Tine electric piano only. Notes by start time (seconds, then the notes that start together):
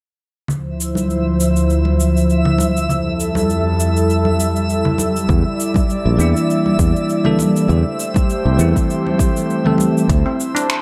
6.17 E3 G3 A#3 D4
6.21 E4
7.24 E3 G3 A#3 D4 A4
8.57 E3 G3 A3 C4 E4
9.65 E3 G3 A3 C4 A4